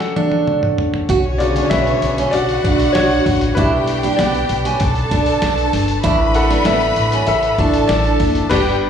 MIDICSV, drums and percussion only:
0, 0, Header, 1, 2, 480
1, 0, Start_track
1, 0, Tempo, 618557
1, 844, Time_signature, 4, 2, 24, 8
1, 6905, End_track
2, 0, Start_track
2, 0, Title_t, "Drums"
2, 3, Note_on_c, 9, 38, 54
2, 81, Note_off_c, 9, 38, 0
2, 127, Note_on_c, 9, 48, 79
2, 205, Note_off_c, 9, 48, 0
2, 245, Note_on_c, 9, 48, 67
2, 323, Note_off_c, 9, 48, 0
2, 369, Note_on_c, 9, 47, 86
2, 446, Note_off_c, 9, 47, 0
2, 488, Note_on_c, 9, 45, 82
2, 566, Note_off_c, 9, 45, 0
2, 608, Note_on_c, 9, 43, 98
2, 686, Note_off_c, 9, 43, 0
2, 727, Note_on_c, 9, 43, 92
2, 804, Note_off_c, 9, 43, 0
2, 845, Note_on_c, 9, 46, 98
2, 846, Note_on_c, 9, 36, 115
2, 923, Note_off_c, 9, 46, 0
2, 924, Note_off_c, 9, 36, 0
2, 1089, Note_on_c, 9, 46, 74
2, 1166, Note_off_c, 9, 46, 0
2, 1209, Note_on_c, 9, 46, 54
2, 1287, Note_off_c, 9, 46, 0
2, 1326, Note_on_c, 9, 38, 117
2, 1326, Note_on_c, 9, 46, 90
2, 1404, Note_off_c, 9, 38, 0
2, 1404, Note_off_c, 9, 46, 0
2, 1451, Note_on_c, 9, 46, 39
2, 1529, Note_off_c, 9, 46, 0
2, 1569, Note_on_c, 9, 46, 73
2, 1647, Note_off_c, 9, 46, 0
2, 1694, Note_on_c, 9, 46, 63
2, 1772, Note_off_c, 9, 46, 0
2, 1807, Note_on_c, 9, 46, 87
2, 1885, Note_off_c, 9, 46, 0
2, 1930, Note_on_c, 9, 46, 36
2, 2007, Note_off_c, 9, 46, 0
2, 2051, Note_on_c, 9, 36, 94
2, 2055, Note_on_c, 9, 46, 65
2, 2129, Note_off_c, 9, 36, 0
2, 2132, Note_off_c, 9, 46, 0
2, 2170, Note_on_c, 9, 46, 61
2, 2247, Note_off_c, 9, 46, 0
2, 2289, Note_on_c, 9, 46, 88
2, 2290, Note_on_c, 9, 38, 117
2, 2367, Note_off_c, 9, 46, 0
2, 2368, Note_off_c, 9, 38, 0
2, 2410, Note_on_c, 9, 46, 38
2, 2488, Note_off_c, 9, 46, 0
2, 2530, Note_on_c, 9, 36, 103
2, 2532, Note_on_c, 9, 38, 37
2, 2533, Note_on_c, 9, 46, 79
2, 2608, Note_off_c, 9, 36, 0
2, 2609, Note_off_c, 9, 38, 0
2, 2610, Note_off_c, 9, 46, 0
2, 2648, Note_on_c, 9, 46, 55
2, 2726, Note_off_c, 9, 46, 0
2, 2769, Note_on_c, 9, 36, 115
2, 2770, Note_on_c, 9, 46, 102
2, 2847, Note_off_c, 9, 36, 0
2, 2847, Note_off_c, 9, 46, 0
2, 3007, Note_on_c, 9, 46, 69
2, 3084, Note_off_c, 9, 46, 0
2, 3130, Note_on_c, 9, 46, 50
2, 3208, Note_off_c, 9, 46, 0
2, 3250, Note_on_c, 9, 38, 126
2, 3250, Note_on_c, 9, 46, 90
2, 3327, Note_off_c, 9, 38, 0
2, 3327, Note_off_c, 9, 46, 0
2, 3371, Note_on_c, 9, 46, 39
2, 3449, Note_off_c, 9, 46, 0
2, 3486, Note_on_c, 9, 46, 65
2, 3564, Note_off_c, 9, 46, 0
2, 3610, Note_on_c, 9, 46, 62
2, 3688, Note_off_c, 9, 46, 0
2, 3723, Note_on_c, 9, 46, 97
2, 3729, Note_on_c, 9, 36, 104
2, 3801, Note_off_c, 9, 46, 0
2, 3807, Note_off_c, 9, 36, 0
2, 3844, Note_on_c, 9, 46, 36
2, 3921, Note_off_c, 9, 46, 0
2, 3968, Note_on_c, 9, 36, 87
2, 3968, Note_on_c, 9, 46, 73
2, 4046, Note_off_c, 9, 36, 0
2, 4046, Note_off_c, 9, 46, 0
2, 4084, Note_on_c, 9, 46, 67
2, 4162, Note_off_c, 9, 46, 0
2, 4205, Note_on_c, 9, 46, 90
2, 4206, Note_on_c, 9, 38, 115
2, 4282, Note_off_c, 9, 46, 0
2, 4284, Note_off_c, 9, 38, 0
2, 4326, Note_on_c, 9, 46, 40
2, 4404, Note_off_c, 9, 46, 0
2, 4447, Note_on_c, 9, 38, 42
2, 4448, Note_on_c, 9, 46, 78
2, 4525, Note_off_c, 9, 38, 0
2, 4526, Note_off_c, 9, 46, 0
2, 4564, Note_on_c, 9, 46, 57
2, 4642, Note_off_c, 9, 46, 0
2, 4683, Note_on_c, 9, 46, 96
2, 4685, Note_on_c, 9, 36, 115
2, 4761, Note_off_c, 9, 46, 0
2, 4763, Note_off_c, 9, 36, 0
2, 4924, Note_on_c, 9, 46, 73
2, 5001, Note_off_c, 9, 46, 0
2, 5048, Note_on_c, 9, 46, 54
2, 5126, Note_off_c, 9, 46, 0
2, 5162, Note_on_c, 9, 38, 119
2, 5162, Note_on_c, 9, 46, 92
2, 5239, Note_off_c, 9, 38, 0
2, 5240, Note_off_c, 9, 46, 0
2, 5283, Note_on_c, 9, 46, 40
2, 5361, Note_off_c, 9, 46, 0
2, 5404, Note_on_c, 9, 46, 67
2, 5481, Note_off_c, 9, 46, 0
2, 5526, Note_on_c, 9, 46, 59
2, 5604, Note_off_c, 9, 46, 0
2, 5639, Note_on_c, 9, 46, 86
2, 5716, Note_off_c, 9, 46, 0
2, 5763, Note_on_c, 9, 46, 38
2, 5841, Note_off_c, 9, 46, 0
2, 5886, Note_on_c, 9, 36, 97
2, 5886, Note_on_c, 9, 46, 69
2, 5963, Note_off_c, 9, 36, 0
2, 5964, Note_off_c, 9, 46, 0
2, 6002, Note_on_c, 9, 46, 63
2, 6080, Note_off_c, 9, 46, 0
2, 6122, Note_on_c, 9, 46, 89
2, 6123, Note_on_c, 9, 38, 120
2, 6200, Note_off_c, 9, 46, 0
2, 6201, Note_off_c, 9, 38, 0
2, 6242, Note_on_c, 9, 46, 37
2, 6320, Note_off_c, 9, 46, 0
2, 6361, Note_on_c, 9, 38, 38
2, 6363, Note_on_c, 9, 46, 76
2, 6364, Note_on_c, 9, 36, 99
2, 6439, Note_off_c, 9, 38, 0
2, 6440, Note_off_c, 9, 46, 0
2, 6442, Note_off_c, 9, 36, 0
2, 6481, Note_on_c, 9, 46, 53
2, 6559, Note_off_c, 9, 46, 0
2, 6602, Note_on_c, 9, 38, 110
2, 6602, Note_on_c, 9, 49, 89
2, 6603, Note_on_c, 9, 36, 109
2, 6679, Note_off_c, 9, 38, 0
2, 6679, Note_off_c, 9, 49, 0
2, 6680, Note_off_c, 9, 36, 0
2, 6905, End_track
0, 0, End_of_file